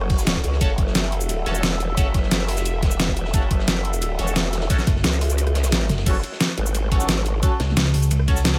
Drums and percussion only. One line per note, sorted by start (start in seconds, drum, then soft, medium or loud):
0.01 cross-stick medium
0.09 kick loud
0.09 closed hi-hat medium
0.09 open hi-hat medium
0.18 snare soft
0.18 shaker medium
0.27 snare loud
0.27 closed hi-hat medium
0.27 ride medium
0.27 shaker soft
0.35 kick medium
0.43 closed hi-hat medium
0.43 ride medium
0.43 shaker soft
0.52 snare medium
0.61 kick loud
0.61 closed hi-hat medium
0.61 ride medium
0.61 shaker medium
0.70 ride soft
0.78 kick loud
0.78 closed hi-hat medium
0.78 ride medium
0.87 snare medium
0.95 snare loud
0.95 closed hi-hat medium
0.95 ride medium
0.95 shaker soft
1.04 cross-stick soft
1.12 closed hi-hat medium
1.12 ride medium
1.21 closed hi-hat soft
1.21 shaker medium
1.29 closed hi-hat medium
1.29 ride medium
1.29 shaker soft
1.46 closed hi-hat medium
1.46 ride medium
1.55 shaker medium
1.63 snare loud
1.63 closed hi-hat medium
1.63 ride medium
1.63 shaker soft
1.72 snare soft
1.80 closed hi-hat medium
1.80 ride medium
1.80 shaker soft
1.97 kick loud
1.97 closed hi-hat medium
1.97 ride medium
1.97 shaker soft
2.14 kick loud
2.14 snare soft
2.14 closed hi-hat medium
2.14 ride medium
2.23 snare medium
2.31 snare loud
2.31 closed hi-hat loud
2.31 ride medium
2.31 shaker medium
2.40 cross-stick soft
2.48 snare loud
2.48 open hi-hat medium
2.48 ride medium
2.57 snare loud
2.57 closed hi-hat soft
2.57 ride medium
2.57 shaker medium
2.66 closed hi-hat loud
2.66 ride medium
2.66 shaker soft
2.82 kick loud
2.82 snare loud
2.82 closed hi-hat medium
2.82 ride medium
2.91 shaker medium
3.00 snare loud
3.00 closed hi-hat medium
3.00 ride medium
3.00 shaker medium
3.08 kick medium
3.17 closed hi-hat medium
3.17 ride medium
3.17 shaker soft
3.25 snare medium
3.34 kick loud
3.34 closed hi-hat medium
3.34 ride medium
3.34 shaker medium
3.42 ride soft
3.51 kick loud
3.51 closed hi-hat medium
3.51 ride medium
3.59 snare medium
3.67 snare loud
3.67 closed hi-hat medium
3.67 ride medium
3.67 shaker medium
3.76 cross-stick soft
3.85 closed hi-hat medium
3.85 ride medium
3.93 closed hi-hat soft
3.93 shaker medium
4.02 closed hi-hat medium
4.02 ride medium
4.02 shaker medium
4.18 closed hi-hat medium
4.18 ride medium
4.27 shaker medium
4.36 snare loud
4.36 closed hi-hat loud
4.36 ride medium
4.36 shaker medium
4.44 snare soft
4.53 snare loud
4.53 closed hi-hat medium
4.53 ride medium
4.53 shaker soft
4.61 snare loud
4.61 ride medium
4.70 kick loud
4.70 snare loud
4.70 closed hi-hat loud
4.70 ride medium
4.70 shaker medium
4.79 snare soft
4.79 shaker soft
4.87 kick loud
4.87 cross-stick soft
4.87 snare soft
4.87 closed hi-hat medium
4.87 ride medium
4.96 snare medium
5.04 snare loud
5.04 closed hi-hat medium
5.04 ride medium
5.04 shaker medium
5.13 cross-stick soft
5.13 shaker soft
5.21 snare medium
5.21 open hi-hat medium
5.21 ride medium
5.30 closed hi-hat soft
5.30 shaker medium
5.38 closed hi-hat loud
5.38 ride medium
5.38 shaker medium
5.47 cross-stick medium
5.47 closed hi-hat soft
5.55 snare loud
5.55 closed hi-hat medium
5.55 ride medium
5.55 shaker soft
5.63 snare loud
5.63 closed hi-hat soft
5.63 ride medium
5.63 shaker medium
5.72 snare loud
5.72 closed hi-hat loud
5.72 ride medium
5.72 shaker medium
5.81 cross-stick soft
5.89 snare loud
5.89 closed hi-hat medium
5.89 ride medium
5.89 shaker soft
5.98 snare loud
5.98 ride medium
6.06 kick loud
6.06 closed hi-hat medium
6.06 crash loud
6.06 ride medium
6.06 shaker soft
6.15 ride soft
6.23 closed hi-hat medium
6.23 ride medium
6.32 snare medium
6.41 snare loud
6.41 closed hi-hat loud
6.41 ride medium
6.41 shaker soft
6.49 cross-stick soft
6.57 closed hi-hat medium
6.57 ride medium
6.66 shaker medium
6.75 closed hi-hat medium
6.75 ride medium
6.75 shaker soft
6.91 kick loud
6.91 closed hi-hat medium
6.91 ride medium
7.00 shaker medium
7.08 snare loud
7.08 closed hi-hat loud
7.08 ride medium
7.08 shaker medium
7.17 snare soft
7.26 closed hi-hat medium
7.26 ride medium
7.26 shaker soft
7.43 kick loud
7.43 closed hi-hat medium
7.43 ride medium
7.43 shaker soft
7.60 cross-stick soft
7.60 snare loud
7.60 closed hi-hat medium
7.60 ride medium
7.69 snare soft
7.77 snare loud
7.77 closed hi-hat loud
7.77 ride medium
7.77 shaker soft
7.85 cross-stick soft
7.85 snare loud
7.85 ride medium
7.93 snare soft
7.93 open hi-hat medium
8.02 ride medium
8.02 shaker medium
8.11 closed hi-hat loud
8.11 ride medium
8.11 shaker soft
8.20 cross-stick medium
8.27 kick loud
8.27 closed hi-hat medium
8.27 open hi-hat medium
8.37 snare soft
8.37 shaker medium
8.44 snare loud
8.44 closed hi-hat medium
8.44 ride medium
8.44 shaker soft